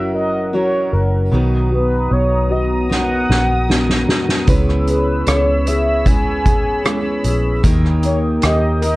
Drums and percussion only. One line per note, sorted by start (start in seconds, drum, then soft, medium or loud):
2.91 snare soft
3.30 snare medium
3.70 snare medium
3.89 snare medium
4.09 snare medium
4.29 snare medium
4.47 kick loud
4.47 closed hi-hat medium
4.69 cross-stick soft
4.87 closed hi-hat medium
5.26 cross-stick loud
5.26 closed hi-hat medium
5.67 closed hi-hat medium
6.06 kick medium
6.06 closed hi-hat medium
6.46 kick medium
6.46 closed hi-hat medium
6.85 cross-stick loud
6.85 closed hi-hat medium
7.24 closed hi-hat medium
7.64 kick loud
7.64 closed hi-hat medium
7.85 cross-stick soft
8.03 closed hi-hat medium
8.42 cross-stick loud
8.42 closed hi-hat medium
8.82 closed hi-hat medium